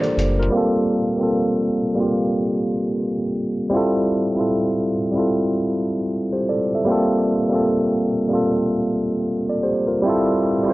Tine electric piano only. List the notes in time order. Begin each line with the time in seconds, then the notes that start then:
Already playing: G3 A#3 D4 F4 G4 A#4 C5
0.01 A4 D5
0.39 F4 A#4
0.50 G3 A#3 C4
0.56 F4 A4
1.16 G3 A#3 C4
1.21 F4 A4
1.95 G3 A#3 C4
2.00 F4 G4
3.69 G3 C4 E4
3.74 F4 A4
4.33 G3 C4 E4
4.39 F4 A4
5.12 G3 C4 E4
5.17 F4 A4
6.33 G4 C5
6.49 A4 D5
6.75 A4 E5
6.84 G3 A#3 C4
6.90 F4 A4
7.49 G3 A#3 C4
7.53 F4 A4
8.28 G3 A#3 C4
8.33 F4 A4
9.49 A4 D5
9.63 G4 C5
9.87 F4 A#4
10.02 G3 C4 E4
10.08 F4 A4
10.63 G3 C4 E4
10.68 F4